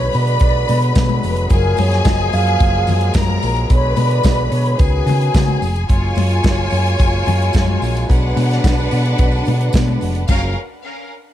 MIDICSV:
0, 0, Header, 1, 6, 480
1, 0, Start_track
1, 0, Key_signature, 6, "major"
1, 0, Tempo, 548446
1, 1324, Time_signature, 4, 2, 24, 8
1, 9920, End_track
2, 0, Start_track
2, 0, Title_t, "Alto flute"
2, 0, Program_c, 0, 73
2, 0, Note_on_c, 0, 73, 113
2, 128, Note_on_c, 0, 74, 111
2, 141, Note_off_c, 0, 73, 0
2, 1085, Note_off_c, 0, 74, 0
2, 1334, Note_on_c, 0, 70, 93
2, 1566, Note_on_c, 0, 73, 103
2, 1579, Note_off_c, 0, 70, 0
2, 1785, Note_on_c, 0, 75, 110
2, 1798, Note_off_c, 0, 73, 0
2, 2039, Note_on_c, 0, 77, 112
2, 2053, Note_off_c, 0, 75, 0
2, 3000, Note_off_c, 0, 77, 0
2, 3248, Note_on_c, 0, 73, 104
2, 3471, Note_on_c, 0, 74, 103
2, 3484, Note_off_c, 0, 73, 0
2, 3932, Note_on_c, 0, 73, 99
2, 3945, Note_off_c, 0, 74, 0
2, 4180, Note_on_c, 0, 71, 88
2, 4193, Note_off_c, 0, 73, 0
2, 4910, Note_off_c, 0, 71, 0
2, 9920, End_track
3, 0, Start_track
3, 0, Title_t, "String section"
3, 0, Program_c, 1, 48
3, 0, Note_on_c, 1, 71, 89
3, 0, Note_on_c, 1, 83, 106
3, 1288, Note_off_c, 1, 71, 0
3, 1289, Note_off_c, 1, 83, 0
3, 1329, Note_on_c, 1, 80, 109
3, 1331, Note_on_c, 1, 68, 102
3, 2736, Note_off_c, 1, 68, 0
3, 2736, Note_off_c, 1, 80, 0
3, 2759, Note_on_c, 1, 70, 92
3, 2759, Note_on_c, 1, 82, 102
3, 3230, Note_off_c, 1, 70, 0
3, 3230, Note_off_c, 1, 82, 0
3, 3237, Note_on_c, 1, 71, 97
3, 3239, Note_on_c, 1, 83, 94
3, 4179, Note_off_c, 1, 71, 0
3, 4180, Note_off_c, 1, 83, 0
3, 4198, Note_on_c, 1, 68, 78
3, 4200, Note_on_c, 1, 80, 82
3, 5139, Note_off_c, 1, 68, 0
3, 5140, Note_off_c, 1, 80, 0
3, 5160, Note_on_c, 1, 80, 105
3, 5161, Note_on_c, 1, 65, 85
3, 5163, Note_on_c, 1, 73, 84
3, 7046, Note_off_c, 1, 80, 0
3, 7047, Note_off_c, 1, 65, 0
3, 7048, Note_off_c, 1, 73, 0
3, 7075, Note_on_c, 1, 71, 92
3, 7079, Note_on_c, 1, 62, 101
3, 7080, Note_on_c, 1, 78, 102
3, 8968, Note_off_c, 1, 71, 0
3, 8970, Note_off_c, 1, 62, 0
3, 8970, Note_off_c, 1, 78, 0
3, 9002, Note_on_c, 1, 77, 103
3, 9008, Note_on_c, 1, 61, 89
3, 9009, Note_on_c, 1, 70, 88
3, 9228, Note_off_c, 1, 77, 0
3, 9231, Note_off_c, 1, 61, 0
3, 9231, Note_off_c, 1, 70, 0
3, 9920, End_track
4, 0, Start_track
4, 0, Title_t, "French horn section"
4, 0, Program_c, 2, 60
4, 0, Note_on_c, 2, 50, 82
4, 0, Note_on_c, 2, 54, 92
4, 0, Note_on_c, 2, 56, 75
4, 0, Note_on_c, 2, 59, 82
4, 1286, Note_off_c, 2, 56, 0
4, 1300, Note_off_c, 2, 59, 0
4, 1302, Note_off_c, 2, 50, 0
4, 1317, Note_on_c, 2, 56, 84
4, 1320, Note_on_c, 2, 58, 81
4, 1322, Note_on_c, 2, 53, 88
4, 3220, Note_off_c, 2, 58, 0
4, 3221, Note_off_c, 2, 53, 0
4, 3231, Note_on_c, 2, 59, 67
4, 3232, Note_on_c, 2, 50, 81
4, 4157, Note_off_c, 2, 54, 0
4, 4168, Note_off_c, 2, 56, 0
4, 4172, Note_off_c, 2, 59, 0
4, 4183, Note_on_c, 2, 51, 83
4, 4183, Note_on_c, 2, 59, 77
4, 4186, Note_off_c, 2, 50, 0
4, 4186, Note_on_c, 2, 61, 78
4, 4195, Note_on_c, 2, 66, 85
4, 5014, Note_off_c, 2, 51, 0
4, 5014, Note_off_c, 2, 59, 0
4, 5014, Note_off_c, 2, 61, 0
4, 5014, Note_off_c, 2, 66, 0
4, 5163, Note_on_c, 2, 65, 80
4, 5164, Note_on_c, 2, 56, 75
4, 5166, Note_on_c, 2, 54, 86
4, 5169, Note_on_c, 2, 58, 74
4, 7064, Note_off_c, 2, 65, 0
4, 7067, Note_off_c, 2, 58, 0
4, 7090, Note_on_c, 2, 59, 77
4, 7099, Note_on_c, 2, 50, 88
4, 8973, Note_off_c, 2, 56, 0
4, 8974, Note_off_c, 2, 54, 0
4, 8991, Note_off_c, 2, 59, 0
4, 8996, Note_off_c, 2, 50, 0
4, 9013, Note_on_c, 2, 53, 65
4, 9018, Note_on_c, 2, 56, 64
4, 9019, Note_on_c, 2, 66, 80
4, 9023, Note_on_c, 2, 58, 70
4, 9233, Note_off_c, 2, 53, 0
4, 9236, Note_off_c, 2, 56, 0
4, 9237, Note_off_c, 2, 66, 0
4, 9239, Note_off_c, 2, 58, 0
4, 9920, End_track
5, 0, Start_track
5, 0, Title_t, "Fingered electric bass"
5, 0, Program_c, 3, 33
5, 128, Note_on_c, 3, 47, 111
5, 317, Note_off_c, 3, 47, 0
5, 360, Note_on_c, 3, 35, 107
5, 552, Note_off_c, 3, 35, 0
5, 607, Note_on_c, 3, 47, 109
5, 796, Note_off_c, 3, 47, 0
5, 841, Note_on_c, 3, 47, 114
5, 1032, Note_off_c, 3, 47, 0
5, 1088, Note_on_c, 3, 29, 93
5, 1276, Note_off_c, 3, 29, 0
5, 1319, Note_on_c, 3, 30, 124
5, 1511, Note_off_c, 3, 30, 0
5, 1563, Note_on_c, 3, 42, 107
5, 1753, Note_off_c, 3, 42, 0
5, 1797, Note_on_c, 3, 30, 101
5, 1989, Note_off_c, 3, 30, 0
5, 2043, Note_on_c, 3, 42, 108
5, 2232, Note_off_c, 3, 42, 0
5, 2282, Note_on_c, 3, 30, 117
5, 2472, Note_off_c, 3, 30, 0
5, 2517, Note_on_c, 3, 42, 111
5, 2709, Note_off_c, 3, 42, 0
5, 2758, Note_on_c, 3, 42, 100
5, 2950, Note_off_c, 3, 42, 0
5, 3002, Note_on_c, 3, 34, 113
5, 3191, Note_off_c, 3, 34, 0
5, 3242, Note_on_c, 3, 35, 115
5, 3432, Note_off_c, 3, 35, 0
5, 3475, Note_on_c, 3, 47, 120
5, 3667, Note_off_c, 3, 47, 0
5, 3716, Note_on_c, 3, 35, 100
5, 3907, Note_off_c, 3, 35, 0
5, 3954, Note_on_c, 3, 47, 106
5, 4146, Note_off_c, 3, 47, 0
5, 4198, Note_on_c, 3, 37, 116
5, 4389, Note_off_c, 3, 37, 0
5, 4429, Note_on_c, 3, 49, 120
5, 4624, Note_off_c, 3, 49, 0
5, 4679, Note_on_c, 3, 49, 98
5, 4870, Note_off_c, 3, 49, 0
5, 4917, Note_on_c, 3, 29, 102
5, 5108, Note_off_c, 3, 29, 0
5, 5161, Note_on_c, 3, 30, 102
5, 5350, Note_off_c, 3, 30, 0
5, 5397, Note_on_c, 3, 42, 106
5, 5588, Note_off_c, 3, 42, 0
5, 5640, Note_on_c, 3, 30, 102
5, 5830, Note_off_c, 3, 30, 0
5, 5883, Note_on_c, 3, 42, 112
5, 6072, Note_off_c, 3, 42, 0
5, 6122, Note_on_c, 3, 30, 120
5, 6312, Note_off_c, 3, 30, 0
5, 6364, Note_on_c, 3, 42, 110
5, 6553, Note_off_c, 3, 42, 0
5, 6608, Note_on_c, 3, 42, 104
5, 6795, Note_off_c, 3, 42, 0
5, 6842, Note_on_c, 3, 34, 111
5, 7032, Note_off_c, 3, 34, 0
5, 7090, Note_on_c, 3, 35, 121
5, 7277, Note_off_c, 3, 35, 0
5, 7320, Note_on_c, 3, 47, 109
5, 7511, Note_off_c, 3, 47, 0
5, 7566, Note_on_c, 3, 35, 121
5, 7755, Note_off_c, 3, 35, 0
5, 7809, Note_on_c, 3, 47, 108
5, 7997, Note_off_c, 3, 47, 0
5, 8048, Note_on_c, 3, 35, 106
5, 8237, Note_off_c, 3, 35, 0
5, 8293, Note_on_c, 3, 47, 98
5, 8480, Note_off_c, 3, 47, 0
5, 8525, Note_on_c, 3, 47, 111
5, 8715, Note_off_c, 3, 47, 0
5, 8773, Note_on_c, 3, 29, 84
5, 8960, Note_off_c, 3, 29, 0
5, 9004, Note_on_c, 3, 30, 104
5, 9228, Note_off_c, 3, 30, 0
5, 9920, End_track
6, 0, Start_track
6, 0, Title_t, "Drums"
6, 112, Note_on_c, 9, 46, 73
6, 126, Note_on_c, 9, 54, 52
6, 200, Note_off_c, 9, 46, 0
6, 214, Note_off_c, 9, 54, 0
6, 237, Note_on_c, 9, 42, 46
6, 325, Note_off_c, 9, 42, 0
6, 345, Note_on_c, 9, 42, 66
6, 357, Note_on_c, 9, 36, 119
6, 369, Note_on_c, 9, 54, 53
6, 433, Note_off_c, 9, 42, 0
6, 445, Note_off_c, 9, 36, 0
6, 457, Note_off_c, 9, 54, 0
6, 594, Note_on_c, 9, 54, 52
6, 600, Note_on_c, 9, 46, 68
6, 612, Note_on_c, 9, 62, 60
6, 682, Note_off_c, 9, 54, 0
6, 687, Note_off_c, 9, 46, 0
6, 699, Note_off_c, 9, 62, 0
6, 719, Note_on_c, 9, 42, 55
6, 806, Note_off_c, 9, 42, 0
6, 834, Note_on_c, 9, 54, 107
6, 835, Note_on_c, 9, 42, 78
6, 836, Note_on_c, 9, 63, 85
6, 839, Note_on_c, 9, 36, 127
6, 847, Note_on_c, 9, 38, 127
6, 921, Note_off_c, 9, 54, 0
6, 923, Note_off_c, 9, 42, 0
6, 924, Note_off_c, 9, 63, 0
6, 926, Note_off_c, 9, 36, 0
6, 935, Note_off_c, 9, 38, 0
6, 956, Note_on_c, 9, 63, 91
6, 1043, Note_off_c, 9, 63, 0
6, 1078, Note_on_c, 9, 54, 60
6, 1085, Note_on_c, 9, 46, 63
6, 1166, Note_off_c, 9, 54, 0
6, 1172, Note_off_c, 9, 46, 0
6, 1194, Note_on_c, 9, 42, 50
6, 1282, Note_off_c, 9, 42, 0
6, 1308, Note_on_c, 9, 54, 54
6, 1313, Note_on_c, 9, 42, 65
6, 1317, Note_on_c, 9, 36, 106
6, 1318, Note_on_c, 9, 62, 41
6, 1395, Note_off_c, 9, 54, 0
6, 1400, Note_off_c, 9, 42, 0
6, 1405, Note_off_c, 9, 36, 0
6, 1405, Note_off_c, 9, 62, 0
6, 1548, Note_on_c, 9, 54, 57
6, 1558, Note_on_c, 9, 46, 74
6, 1561, Note_on_c, 9, 62, 74
6, 1635, Note_off_c, 9, 54, 0
6, 1645, Note_off_c, 9, 46, 0
6, 1649, Note_off_c, 9, 62, 0
6, 1675, Note_on_c, 9, 54, 36
6, 1676, Note_on_c, 9, 42, 49
6, 1687, Note_on_c, 9, 38, 37
6, 1762, Note_off_c, 9, 54, 0
6, 1763, Note_off_c, 9, 42, 0
6, 1774, Note_off_c, 9, 38, 0
6, 1792, Note_on_c, 9, 54, 96
6, 1797, Note_on_c, 9, 36, 125
6, 1798, Note_on_c, 9, 42, 70
6, 1802, Note_on_c, 9, 63, 91
6, 1808, Note_on_c, 9, 38, 117
6, 1879, Note_off_c, 9, 54, 0
6, 1884, Note_off_c, 9, 36, 0
6, 1885, Note_off_c, 9, 42, 0
6, 1889, Note_off_c, 9, 63, 0
6, 1895, Note_off_c, 9, 38, 0
6, 2036, Note_on_c, 9, 54, 53
6, 2041, Note_on_c, 9, 46, 69
6, 2123, Note_off_c, 9, 54, 0
6, 2128, Note_off_c, 9, 46, 0
6, 2162, Note_on_c, 9, 42, 47
6, 2250, Note_off_c, 9, 42, 0
6, 2276, Note_on_c, 9, 54, 48
6, 2277, Note_on_c, 9, 42, 65
6, 2280, Note_on_c, 9, 36, 127
6, 2364, Note_off_c, 9, 54, 0
6, 2365, Note_off_c, 9, 42, 0
6, 2367, Note_off_c, 9, 36, 0
6, 2512, Note_on_c, 9, 54, 60
6, 2520, Note_on_c, 9, 46, 72
6, 2533, Note_on_c, 9, 62, 60
6, 2533, Note_on_c, 9, 64, 89
6, 2599, Note_off_c, 9, 54, 0
6, 2608, Note_off_c, 9, 46, 0
6, 2620, Note_off_c, 9, 62, 0
6, 2620, Note_off_c, 9, 64, 0
6, 2634, Note_on_c, 9, 42, 59
6, 2722, Note_off_c, 9, 42, 0
6, 2746, Note_on_c, 9, 54, 97
6, 2751, Note_on_c, 9, 42, 77
6, 2756, Note_on_c, 9, 36, 127
6, 2763, Note_on_c, 9, 38, 120
6, 2763, Note_on_c, 9, 63, 85
6, 2833, Note_off_c, 9, 54, 0
6, 2838, Note_off_c, 9, 42, 0
6, 2844, Note_off_c, 9, 36, 0
6, 2850, Note_off_c, 9, 38, 0
6, 2850, Note_off_c, 9, 63, 0
6, 2869, Note_on_c, 9, 63, 91
6, 2957, Note_off_c, 9, 63, 0
6, 2996, Note_on_c, 9, 46, 71
6, 2998, Note_on_c, 9, 54, 62
6, 3084, Note_off_c, 9, 46, 0
6, 3085, Note_off_c, 9, 54, 0
6, 3120, Note_on_c, 9, 42, 54
6, 3208, Note_off_c, 9, 42, 0
6, 3236, Note_on_c, 9, 54, 53
6, 3237, Note_on_c, 9, 62, 40
6, 3238, Note_on_c, 9, 42, 71
6, 3240, Note_on_c, 9, 36, 100
6, 3324, Note_off_c, 9, 54, 0
6, 3325, Note_off_c, 9, 42, 0
6, 3325, Note_off_c, 9, 62, 0
6, 3327, Note_off_c, 9, 36, 0
6, 3469, Note_on_c, 9, 54, 55
6, 3475, Note_on_c, 9, 62, 70
6, 3476, Note_on_c, 9, 46, 68
6, 3556, Note_off_c, 9, 54, 0
6, 3563, Note_off_c, 9, 62, 0
6, 3564, Note_off_c, 9, 46, 0
6, 3592, Note_on_c, 9, 54, 32
6, 3598, Note_on_c, 9, 42, 51
6, 3679, Note_off_c, 9, 54, 0
6, 3686, Note_off_c, 9, 42, 0
6, 3706, Note_on_c, 9, 54, 108
6, 3715, Note_on_c, 9, 42, 73
6, 3716, Note_on_c, 9, 36, 118
6, 3722, Note_on_c, 9, 63, 85
6, 3724, Note_on_c, 9, 38, 116
6, 3794, Note_off_c, 9, 54, 0
6, 3802, Note_off_c, 9, 42, 0
6, 3803, Note_off_c, 9, 36, 0
6, 3810, Note_off_c, 9, 63, 0
6, 3812, Note_off_c, 9, 38, 0
6, 3954, Note_on_c, 9, 46, 70
6, 3954, Note_on_c, 9, 54, 50
6, 4041, Note_off_c, 9, 54, 0
6, 4042, Note_off_c, 9, 46, 0
6, 4076, Note_on_c, 9, 42, 42
6, 4164, Note_off_c, 9, 42, 0
6, 4192, Note_on_c, 9, 42, 70
6, 4197, Note_on_c, 9, 36, 127
6, 4203, Note_on_c, 9, 54, 48
6, 4279, Note_off_c, 9, 42, 0
6, 4285, Note_off_c, 9, 36, 0
6, 4290, Note_off_c, 9, 54, 0
6, 4434, Note_on_c, 9, 46, 66
6, 4442, Note_on_c, 9, 54, 53
6, 4457, Note_on_c, 9, 62, 59
6, 4457, Note_on_c, 9, 64, 85
6, 4522, Note_off_c, 9, 46, 0
6, 4530, Note_off_c, 9, 54, 0
6, 4544, Note_off_c, 9, 62, 0
6, 4544, Note_off_c, 9, 64, 0
6, 4563, Note_on_c, 9, 42, 53
6, 4650, Note_off_c, 9, 42, 0
6, 4676, Note_on_c, 9, 42, 83
6, 4676, Note_on_c, 9, 54, 93
6, 4678, Note_on_c, 9, 36, 127
6, 4688, Note_on_c, 9, 38, 118
6, 4688, Note_on_c, 9, 63, 78
6, 4764, Note_off_c, 9, 42, 0
6, 4764, Note_off_c, 9, 54, 0
6, 4766, Note_off_c, 9, 36, 0
6, 4776, Note_off_c, 9, 38, 0
6, 4776, Note_off_c, 9, 63, 0
6, 4795, Note_on_c, 9, 63, 93
6, 4883, Note_off_c, 9, 63, 0
6, 4919, Note_on_c, 9, 54, 54
6, 4925, Note_on_c, 9, 46, 59
6, 5007, Note_off_c, 9, 54, 0
6, 5012, Note_off_c, 9, 46, 0
6, 5040, Note_on_c, 9, 42, 51
6, 5128, Note_off_c, 9, 42, 0
6, 5154, Note_on_c, 9, 54, 53
6, 5160, Note_on_c, 9, 36, 106
6, 5162, Note_on_c, 9, 42, 67
6, 5242, Note_off_c, 9, 54, 0
6, 5247, Note_off_c, 9, 36, 0
6, 5250, Note_off_c, 9, 42, 0
6, 5386, Note_on_c, 9, 54, 51
6, 5405, Note_on_c, 9, 46, 78
6, 5406, Note_on_c, 9, 62, 70
6, 5474, Note_off_c, 9, 54, 0
6, 5492, Note_off_c, 9, 46, 0
6, 5494, Note_off_c, 9, 62, 0
6, 5522, Note_on_c, 9, 42, 47
6, 5610, Note_off_c, 9, 42, 0
6, 5632, Note_on_c, 9, 54, 95
6, 5639, Note_on_c, 9, 36, 121
6, 5640, Note_on_c, 9, 63, 90
6, 5642, Note_on_c, 9, 42, 73
6, 5652, Note_on_c, 9, 38, 121
6, 5719, Note_off_c, 9, 54, 0
6, 5727, Note_off_c, 9, 36, 0
6, 5728, Note_off_c, 9, 63, 0
6, 5730, Note_off_c, 9, 42, 0
6, 5739, Note_off_c, 9, 38, 0
6, 5868, Note_on_c, 9, 54, 51
6, 5888, Note_on_c, 9, 46, 67
6, 5955, Note_off_c, 9, 54, 0
6, 5976, Note_off_c, 9, 46, 0
6, 6007, Note_on_c, 9, 42, 44
6, 6094, Note_off_c, 9, 42, 0
6, 6113, Note_on_c, 9, 54, 49
6, 6123, Note_on_c, 9, 36, 127
6, 6126, Note_on_c, 9, 42, 64
6, 6201, Note_off_c, 9, 54, 0
6, 6211, Note_off_c, 9, 36, 0
6, 6214, Note_off_c, 9, 42, 0
6, 6238, Note_on_c, 9, 54, 33
6, 6326, Note_off_c, 9, 54, 0
6, 6353, Note_on_c, 9, 54, 55
6, 6368, Note_on_c, 9, 46, 65
6, 6371, Note_on_c, 9, 62, 53
6, 6371, Note_on_c, 9, 64, 74
6, 6440, Note_off_c, 9, 54, 0
6, 6456, Note_off_c, 9, 46, 0
6, 6459, Note_off_c, 9, 62, 0
6, 6459, Note_off_c, 9, 64, 0
6, 6494, Note_on_c, 9, 42, 52
6, 6582, Note_off_c, 9, 42, 0
6, 6591, Note_on_c, 9, 54, 95
6, 6604, Note_on_c, 9, 36, 125
6, 6607, Note_on_c, 9, 42, 79
6, 6609, Note_on_c, 9, 63, 81
6, 6618, Note_on_c, 9, 38, 120
6, 6678, Note_off_c, 9, 54, 0
6, 6692, Note_off_c, 9, 36, 0
6, 6694, Note_off_c, 9, 42, 0
6, 6697, Note_off_c, 9, 63, 0
6, 6706, Note_off_c, 9, 38, 0
6, 6718, Note_on_c, 9, 63, 89
6, 6805, Note_off_c, 9, 63, 0
6, 6844, Note_on_c, 9, 54, 56
6, 6858, Note_on_c, 9, 46, 67
6, 6931, Note_off_c, 9, 54, 0
6, 6946, Note_off_c, 9, 46, 0
6, 6957, Note_on_c, 9, 54, 36
6, 6973, Note_on_c, 9, 42, 55
6, 7044, Note_off_c, 9, 54, 0
6, 7060, Note_off_c, 9, 42, 0
6, 7082, Note_on_c, 9, 54, 56
6, 7087, Note_on_c, 9, 36, 99
6, 7096, Note_on_c, 9, 42, 65
6, 7170, Note_off_c, 9, 54, 0
6, 7174, Note_off_c, 9, 36, 0
6, 7183, Note_off_c, 9, 42, 0
6, 7324, Note_on_c, 9, 54, 57
6, 7324, Note_on_c, 9, 62, 67
6, 7329, Note_on_c, 9, 46, 79
6, 7412, Note_off_c, 9, 54, 0
6, 7412, Note_off_c, 9, 62, 0
6, 7417, Note_off_c, 9, 46, 0
6, 7448, Note_on_c, 9, 42, 43
6, 7451, Note_on_c, 9, 54, 32
6, 7459, Note_on_c, 9, 38, 39
6, 7535, Note_off_c, 9, 42, 0
6, 7538, Note_off_c, 9, 54, 0
6, 7546, Note_off_c, 9, 38, 0
6, 7563, Note_on_c, 9, 36, 123
6, 7564, Note_on_c, 9, 63, 91
6, 7567, Note_on_c, 9, 54, 102
6, 7570, Note_on_c, 9, 42, 76
6, 7580, Note_on_c, 9, 38, 104
6, 7651, Note_off_c, 9, 36, 0
6, 7652, Note_off_c, 9, 63, 0
6, 7654, Note_off_c, 9, 54, 0
6, 7658, Note_off_c, 9, 42, 0
6, 7668, Note_off_c, 9, 38, 0
6, 7685, Note_on_c, 9, 54, 44
6, 7772, Note_off_c, 9, 54, 0
6, 7800, Note_on_c, 9, 46, 66
6, 7800, Note_on_c, 9, 54, 54
6, 7887, Note_off_c, 9, 46, 0
6, 7888, Note_off_c, 9, 54, 0
6, 7925, Note_on_c, 9, 42, 47
6, 8013, Note_off_c, 9, 42, 0
6, 8038, Note_on_c, 9, 42, 65
6, 8038, Note_on_c, 9, 54, 50
6, 8044, Note_on_c, 9, 36, 127
6, 8125, Note_off_c, 9, 54, 0
6, 8126, Note_off_c, 9, 42, 0
6, 8132, Note_off_c, 9, 36, 0
6, 8152, Note_on_c, 9, 54, 35
6, 8240, Note_off_c, 9, 54, 0
6, 8273, Note_on_c, 9, 54, 59
6, 8286, Note_on_c, 9, 46, 68
6, 8300, Note_on_c, 9, 62, 60
6, 8361, Note_off_c, 9, 54, 0
6, 8373, Note_off_c, 9, 46, 0
6, 8388, Note_off_c, 9, 62, 0
6, 8409, Note_on_c, 9, 42, 53
6, 8496, Note_off_c, 9, 42, 0
6, 8513, Note_on_c, 9, 54, 94
6, 8524, Note_on_c, 9, 36, 127
6, 8525, Note_on_c, 9, 42, 77
6, 8533, Note_on_c, 9, 63, 80
6, 8537, Note_on_c, 9, 38, 122
6, 8600, Note_off_c, 9, 54, 0
6, 8611, Note_off_c, 9, 36, 0
6, 8613, Note_off_c, 9, 42, 0
6, 8621, Note_off_c, 9, 63, 0
6, 8625, Note_off_c, 9, 38, 0
6, 8648, Note_on_c, 9, 63, 89
6, 8736, Note_off_c, 9, 63, 0
6, 8761, Note_on_c, 9, 54, 57
6, 8772, Note_on_c, 9, 46, 63
6, 8849, Note_off_c, 9, 54, 0
6, 8860, Note_off_c, 9, 46, 0
6, 8883, Note_on_c, 9, 42, 48
6, 8970, Note_off_c, 9, 42, 0
6, 8995, Note_on_c, 9, 54, 78
6, 9004, Note_on_c, 9, 36, 117
6, 9007, Note_on_c, 9, 49, 85
6, 9012, Note_on_c, 9, 62, 75
6, 9083, Note_off_c, 9, 54, 0
6, 9092, Note_off_c, 9, 36, 0
6, 9095, Note_off_c, 9, 49, 0
6, 9099, Note_off_c, 9, 62, 0
6, 9920, End_track
0, 0, End_of_file